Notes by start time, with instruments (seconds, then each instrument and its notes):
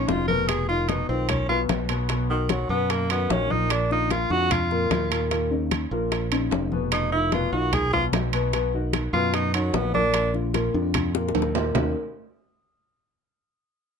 0.08 fingered electric bass F1, upright piano C#3 C#4 D#4, tenor saxophone F4, high bongo, low bongo, high conga, low timbale
0.28 upright piano B2 B3 B4, tenor saxophone A#4, high conga
0.48 tenor saxophone G#4, high bongo, high conga, high timbale
0.69 upright piano D#3 D#4 F4, tenor saxophone F4, high bongo, high conga
0.88 upright piano B2 B3 B4, tenor saxophone D#4, high bongo, high conga, high timbale, low timbale
1.09 fingered electric bass B1, upright piano D#3 D#4 F4, tenor saxophone C4
1.29 tenor saxophone C#4, high bongo, high conga, low conga, high timbale
1.49 upright piano B2 B3 B4, tenor saxophone F4, high bongo, high conga
1.69 fingered electric bass B1, high bongo, low bongo, high conga, high timbale, low timbale
1.89 upright piano B2 B3 B4, high bongo, high conga, high timbale
2.09 upright piano B2 B3 B4, high bongo, high conga, high timbale
2.30 tenor saxophone D#3, upright piano D#3 D#4 F#4, high conga
2.49 tenor saxophone F#3, high bongo, high conga, high timbale, low timbale
2.69 fingered electric bass F#2, upright piano B2 B3 B4, tenor saxophone B3, high conga
2.90 tenor saxophone A#3, high bongo, high conga, high timbale
3.10 upright piano D#3 D#4 F#4, tenor saxophone B3, high conga, high timbale
3.30 fingered electric bass A#1, upright piano D#3 D#4 F#4, tenor saxophone C#4, high bongo, low bongo, high conga, low timbale
3.50 upright piano A#2 A#3 A#4, tenor saxophone D#4, high conga
3.70 tenor saxophone D4, high bongo, high timbale
3.91 upright piano D3 D4 F4, tenor saxophone D#4, high bongo, high conga
4.10 upright piano A#2 A#3 A#4, tenor saxophone F4, high bongo, high conga, high timbale, low timbale
4.30 fingered electric bass F2, upright piano D3 D4 F4, tenor saxophone F#4
4.51 tenor saxophone F4, high bongo, high conga, low conga, high timbale
4.71 upright piano A#2 A#3 A#4, high bongo, high conga
4.90 fingered electric bass D#2, high bongo, low bongo, high conga, high timbale, low timbale
5.11 upright piano A#2 A#3 A#4, high bongo, high conga, high timbale
5.31 upright piano A#2 A#3 A#4, high bongo, high conga, high timbale
5.51 upright piano C#3 C#4 D#4, high conga
5.71 high bongo, high conga, high timbale, low timbale
5.91 fingered electric bass A#1, upright piano A#2 A#3 A#4, high conga
6.12 high bongo, high conga, high timbale
6.32 upright piano C#3 C#4 D#4, high conga, high timbale
6.51 fingered electric bass F1, upright piano C#3 C#4 D#4, high bongo, low bongo, high conga, low timbale
6.72 upright piano B2 B3 B4, high conga
6.92 tenor saxophone D#4, high bongo, high conga, high timbale
7.12 upright piano D#3 D#4 F4, tenor saxophone E4, high bongo, high conga
7.32 upright piano B2 B3 B4, tenor saxophone F4, high bongo, high conga, high timbale, low timbale
7.52 fingered electric bass B1, upright piano D#3 D#4 F4, tenor saxophone F#4
7.73 tenor saxophone G#4, high bongo, high conga, low conga, high timbale
7.93 upright piano B2 B3 B4, tenor saxophone F4, high bongo, high conga, low conga
8.13 fingered electric bass B1, high bongo, low bongo, high conga, high timbale, low timbale
8.33 upright piano B2 B3 B4, high bongo, high conga, high timbale
8.53 upright piano B2 B3 B4, high bongo, high conga, high timbale
8.73 upright piano D#3 D#4 F#4, high conga
8.93 high bongo, high conga, high timbale, low timbale
9.13 fingered electric bass F#2, upright piano B2 B3 B4, tenor saxophone F4, high conga
9.34 tenor saxophone D#4, high bongo, high conga, high timbale
9.54 upright piano D#3 D#4 F#4, tenor saxophone F#3, high conga, high timbale
9.73 fingered electric bass A#1, upright piano D#3 D#4 F#4, tenor saxophone B3, high bongo, low bongo, high conga, low timbale
9.94 upright piano A#2 A#3 A#4, tenor saxophone D4, high conga
10.14 high bongo, high conga, high timbale
10.34 upright piano D3 D4 F4, high bongo, high conga
10.54 upright piano A#2 A#3 A#4, high bongo, high conga, high timbale, low timbale
10.74 fingered electric bass F2, upright piano D3 D4 F4
10.94 high bongo, high conga, low conga, high timbale
11.14 upright piano A#2 A#3 A#4, high bongo, high conga
11.28 high bongo
11.35 fingered electric bass D#2, high conga, high timbale
11.42 low bongo
11.55 upright piano A#2 A#3 A#4, low bongo, low timbale
11.74 fingered electric bass D#2, upright piano D#3 A#3 C#4 D#4 F#4 A#4, low bongo, low conga, low timbale